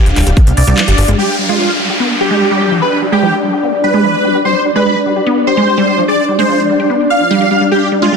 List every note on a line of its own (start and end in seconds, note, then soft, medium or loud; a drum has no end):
0.00 1.17 D4 medium
0.00 1.20 F5 medium
0.06 0.12 D1 medium
0.06 closed hi-hat medium
0.16 0.22 D1 loud
0.16 0.26 G3 medium
0.16 clap medium
0.16 open hi-hat loud
0.27 0.32 D1 medium
0.27 0.34 G4 medium
0.27 closed hi-hat medium
0.37 0.44 B3 medium
0.37 kick loud
0.37 closed hi-hat medium
0.47 0.53 C2 medium
0.47 closed hi-hat medium
0.57 0.63 C2 loud
0.57 1.10 D5 loud
0.57 open hi-hat loud
0.67 0.73 C2 medium
0.67 0.74 G3 loud
0.67 closed hi-hat medium
0.78 0.85 F3 medium
0.78 clap loud
0.78 closed hi-hat medium
0.88 0.94 G1 medium
0.88 0.95 G4 medium
0.88 closed hi-hat medium
0.98 1.04 G1 loud
0.98 1.05 G4 medium
0.98 open hi-hat loud
1.08 1.14 G1 medium
1.08 1.15 G#3 loud
1.08 closed hi-hat medium
1.18 1.23 G3 medium
1.18 8.17 D4 medium
1.18 1.35 G4 loud
1.18 7.74 D5 medium
1.18 crash medium
1.18 downlifter medium
1.39 1.49 G3 medium
1.49 1.53 G#3 loud
1.49 1.71 F4 medium
1.59 1.63 G3 medium
1.80 1.89 G3 medium
1.90 1.97 G4 medium
2.00 2.07 B3 loud
2.20 2.28 G3 medium
2.20 2.74 G4 loud
2.31 2.35 G#3 loud
2.41 2.48 G4 medium
2.51 2.58 G3 loud
2.61 2.71 G3 medium
2.71 2.76 F3 medium
2.82 2.86 G#4 medium
2.82 2.98 B4 loud
3.02 3.09 G3 medium
3.12 3.17 G#3 loud
3.12 3.34 G4 medium
3.22 3.30 F3 medium
3.43 3.53 G3 medium
3.53 3.60 G4 medium
3.63 3.70 B3 medium
3.84 3.91 G3 medium
3.84 4.37 B4 loud
3.94 3.98 G#3 loud
4.04 4.11 F3 medium
4.25 4.34 G3 medium
4.35 4.42 G4 medium
4.45 4.49 G3 medium
4.45 4.61 C5 loud
4.65 4.75 G3 medium
4.76 4.80 G#3 loud
4.76 4.97 B4 medium
4.86 4.90 G3 medium
5.06 5.16 G3 medium
5.16 5.23 G4 medium
5.27 5.34 B3 loud
5.47 5.54 G3 medium
5.47 6.00 C5 medium
5.57 5.61 G#3 loud
5.67 5.74 G4 medium
5.78 5.85 G3 loud
5.88 5.97 G3 medium
5.98 6.02 F3 medium
6.08 6.12 G#4 medium
6.08 6.25 D5 loud
6.29 6.36 G3 medium
6.39 6.43 G#3 loud
6.39 6.61 C5 medium
6.49 6.56 F3 medium
6.69 6.79 G3 medium
6.80 6.87 G4 medium
6.90 6.97 B3 medium
7.10 7.63 F5 loud
7.20 7.25 F3 medium
7.31 7.38 G3 loud
7.41 7.48 G4 medium
7.51 7.58 G3 medium
7.61 7.66 G3 medium
7.71 7.76 G3 medium
7.71 7.88 G4 loud
7.71 8.17 B4 medium
7.92 8.02 G3 medium
8.02 8.06 G#3 loud
8.02 8.17 F4 medium
8.12 8.17 G3 medium